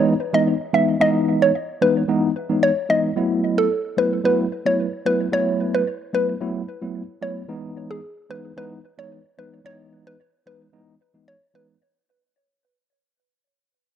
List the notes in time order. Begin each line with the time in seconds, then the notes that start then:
Already playing: E3 G#3 B3 D#4
0.33 E3 G#3 B3 D#4 D#5
0.73 E3 G#3 B3 D#4 E5
1.00 E3 G#3 B3 D#4 D#5
1.42 C#5
1.81 E3 G#3 B3 D#4 B4
2.08 E3 G#3 B3 D#4
2.49 E3 G#3 B3 D#4
2.63 C#5
2.89 E3 G#3 B3 D#4 D#5
3.16 F#3 A3 B3 E4
3.58 A4
3.97 F#3 A3 B3 E4 B4
4.24 F#3 A3 B3 E4 B4
4.65 F#3 A3 B3 E4 C#5
5.05 F#3 A3 B3 E4 B4
5.32 F#3 A3 B3 E4 C#5
5.75 B4
6.13 F#3 A3 B3 E4 B4
6.40 F#3 A3 B3 E4
6.82 F#3 A3 B3 E4
7.22 F#3 A3 B3 E4 C#5
7.48 E3 G#3 B3 D#4
7.91 G#4
8.30 E3 G#3 B3 D#4 B4
8.57 E3 G#3 B3 D#4 B4
8.98 E3 G#3 B3 D#4 C#5
9.38 E3 G#3 B3 D#4 B4
9.65 E3 G#3 B3 D#4 C#5
10.07 B4
10.46 E3 G#3 B3 D#4 B4
10.73 E3 G#3 B3 D#4
11.14 E3 G#3 B3 D#4
11.28 C#5
11.54 E3 G#3 B3 D#4 B4